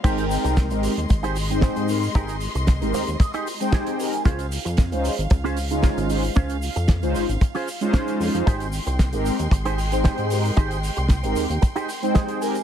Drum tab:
CC |x---------------|----------------|----------------|----------------|
HH |xxoxxxoxxxoxxxoo|xxoxxxoxxxoxxxox|xxoxxxoxxxoxxxoo|xxoxxxoxxooxxxox|
SH |xxxxxxxxxxxxxxxx|xxxxxxxxxxxxxxxx|xxxxxxxxxxxxxxxx|xxxxxxxxxxxxxxxx|
SD |----o-------o---|----o-------o---|----o-------o---|----o-------o---|
BD |o---o---o---o---|o---o---o---o---|o---o---o---o---|o---o---o---o---|

CC |----------------|----------------|
HH |xxoxxxoxxxoxxxoo|xxoxxxoxxxoxxxox|
SH |xxxxxxxxxxxxxxxx|xxxxxxxxxxxxxxxx|
SD |----o-------o---|----o-------o---|
BD |o---o---o---o---|o---o---o---o---|